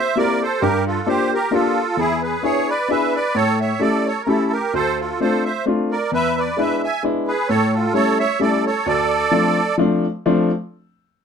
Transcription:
Already playing: accordion C5 E5
0.16 upright piano A#3 C4 E4 G4, accordion A#4 D5
0.42 accordion A4 C5
0.61 upright piano G2, accordion G4 A#4
0.87 accordion F4 A4
1.06 upright piano A#3 D4 F4 G4, accordion G4 C5
1.34 accordion G4 A#4
1.51 upright piano A#3 D4 F4 G4, accordion F4 A4
1.97 upright piano E2, accordion E4 G#4
2.23 accordion G#4 B4
2.43 upright piano B3 D4 E4 G#4, accordion G#4 C#5
2.69 accordion B4 D5
2.88 upright piano B3 D4 E4 G#4, accordion B4 E5
3.15 accordion B4 D5
3.35 upright piano A2, accordion A4 C#5
3.60 accordion C#5 E5
3.79 upright piano A3 C#4 E4 G4, accordion A4 D5
4.06 accordion A4 C#5
4.22 accordion A#4
4.26 upright piano A3 C#4 E4 G4, accordion E4 A4
4.51 accordion G4 A#4
4.73 upright piano D2, accordion A4 C5
5.00 accordion F4 A4
5.20 upright piano A3 C4 D4 F4, accordion A4 C5
5.45 accordion C5 E5
5.66 upright piano A3 C4 D4 F4
5.91 accordion A#4 D5
6.12 upright piano E2, accordion B4 E5
6.37 accordion B4 D5
6.57 upright piano G#3 B3 D4 E4, accordion B4
6.61 accordion E5
6.83 accordion E5 G#5
7.03 upright piano G#3 B3 D4 E4
7.27 accordion G#4 B4
7.49 upright piano A2, accordion A4 C#5
7.73 accordion F4 A4
7.94 upright piano G3 A3 C#4 E4, accordion A4 C#5
8.19 accordion C#5 E5
8.39 upright piano G3 A3 C#4 E4, accordion A4 D5
8.66 accordion A4 C#5
8.86 upright piano D2, accordion A4 D5
9.31 upright piano F3 A3 C4 D4
9.78 upright piano F3 A3 C4 D4
10.26 upright piano F3 A3 C4 D4

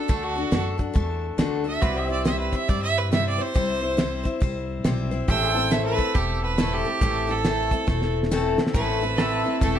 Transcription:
Already playing: pedal steel guitar F#4 A4 D5, fiddle A4
0.08 upright bass D2, steel-string acoustic guitar D3 A3 D4 F#4 A4, kick, closed hi-hat
0.23 fiddle F#4
0.35 steel-string acoustic guitar D4 F#4 A4
0.51 upright bass F#2, steel-string acoustic guitar D3 A3 D4 F#4 A4, snare, closed hi-hat
0.78 steel-string acoustic guitar D4 F#4 A4, kick, closed hi-hat
0.94 upright bass E2, steel-string acoustic guitar A3 D4 F#4 A4, kick, closed hi-hat
1.38 upright bass D2, steel-string acoustic guitar D3 A3 D4 F#4 A4, snare, closed hi-hat
1.64 steel-string acoustic guitar D4 F#4 A4
1.68 fiddle E5
1.82 upright bass C2, steel-string acoustic guitar C3 G3 C4 E4 C5, pedal steel guitar F#4 C5 D5, fiddle B4, kick, closed hi-hat
1.97 fiddle E5
2.02 pedal steel guitar G4
2.08 steel-string acoustic guitar C4 E4 C5, fiddle D5, pedal steel guitar E5
2.25 steel-string acoustic guitar C3 G3 C4 E4 C5, fiddle E5, snare, closed hi-hat
2.39 fiddle B4
2.52 steel-string acoustic guitar C4 E4 C5, fiddle E5, kick, closed hi-hat
2.68 upright bass G2, steel-string acoustic guitar G3 C4 E4 C5, fiddle D5, kick, closed hi-hat
2.83 fiddle E5
2.98 fiddle B4
3.12 steel-string acoustic guitar C3 G3 C4 E4 C5, fiddle E5, snare, closed hi-hat
3.29 fiddle D5
3.38 steel-string acoustic guitar C4 E4 C5, fiddle C5
3.54 upright bass C2, steel-string acoustic guitar C3 G3 C4 E4 C5, kick, closed hi-hat
3.81 steel-string acoustic guitar C4 E4 C5
3.97 steel-string acoustic guitar C3 G3 C4 E4 C5, snare, closed hi-hat
4.23 steel-string acoustic guitar C4 E4 C5, kick, closed hi-hat
4.40 upright bass C2, steel-string acoustic guitar G3 C4 E4 C5, kick, closed hi-hat
4.84 upright bass B1, steel-string acoustic guitar C3 G3 C4 E4 C5, snare, closed hi-hat
5.11 steel-string acoustic guitar C4 E4 C5
5.28 upright bass A1, steel-string acoustic guitar A2 E3 A3 C4 E4 A4, pedal steel guitar G4 C5 E5, fiddle G5, kick, closed hi-hat
5.54 steel-string acoustic guitar A3 C4 E4 A4, pedal steel guitar A4
5.71 steel-string acoustic guitar A2 E3 A3 C4 E4 A4, fiddle E5, snare, closed hi-hat
5.85 fiddle B4
5.97 steel-string acoustic guitar A3 C4 E4 A4, kick, closed hi-hat
6.14 upright bass E1, steel-string acoustic guitar A3 C4 E4 A4, fiddle G4, kick, closed hi-hat
6.44 fiddle B4
6.58 steel-string acoustic guitar A2 E3 A3 C4 E4 A4, snare, closed hi-hat
6.73 fiddle G4
6.85 steel-string acoustic guitar A3 C4 E4 A4
7.01 upright bass A1, steel-string acoustic guitar A2 E3 A3 C4 E4 A4, kick, closed hi-hat
7.27 steel-string acoustic guitar A3 C4 E4 A4, fiddle A4
7.44 steel-string acoustic guitar A2 E3 A3 C4 E4 A4, snare, closed hi-hat
7.71 steel-string acoustic guitar A3 C4 E4 A4, kick, closed hi-hat
7.87 upright bass E1, steel-string acoustic guitar A3 C4 E4 A4, kick, snare
8.02 snare
8.23 snare
8.31 steel-string acoustic guitar A2 E3 A3 C4 E4 A4, snare
8.58 steel-string acoustic guitar A3 C4 E4 A4, snare
8.67 snare
8.74 upright bass A1, steel-string acoustic guitar A2 E3 A3 C4 E4 A4, fiddle B4, kick, open hi-hat
9.01 steel-string acoustic guitar A3 C4 E4 A4
9.17 steel-string acoustic guitar A3 C4 E4 A4, pedal steel guitar C4 A4 E5, snare, open hi-hat
9.44 steel-string acoustic guitar A3 C4 E4 A4
9.61 upright bass E1, steel-string acoustic guitar A2 E3 A3 C4 E4 A4, fiddle A4, kick, open hi-hat
9.75 fiddle G4

